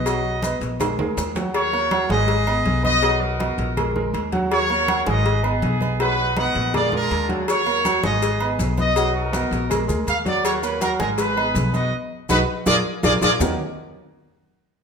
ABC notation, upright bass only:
X:1
M:4/4
L:1/8
Q:1/4=162
K:Ebm
V:1 name="Upright bass" clef=bass
C,,3 B,,,2 =D,, E,,2- | E,,3 A,,,3 C,,2- | C,,3 B,,,3 E,,2- | E,,3 A,,,3 C,,2- |
C,,3 B,,,3 E,,2- | E,,3 A,,,3 C,,2- | C,,3 B,,,2 =D,, E,,2- | E,,3 A,,,3 C,,2 |
z2 =B,,, z _B,,, z B,,, B,,, | E,, z6 z |]